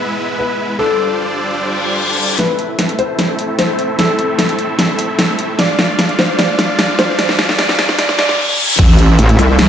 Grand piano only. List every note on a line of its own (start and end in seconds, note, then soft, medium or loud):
0.00 0.31 B4 medium
0.39 0.66 B4 medium
0.79 2.31 A4 medium
2.39 2.91 B4 medium
2.99 3.51 C5 medium
3.59 3.86 C5 medium
3.99 5.51 A4 medium
5.59 6.11 D5 medium
6.19 6.37 C5 medium
6.39 6.91 D5 medium
6.99 7.17 C5 medium
7.19 7.57 D5 loud
7.59 7.97 D5 loud
7.99 8.17 D5 loud
8.19 8.37 D5 loud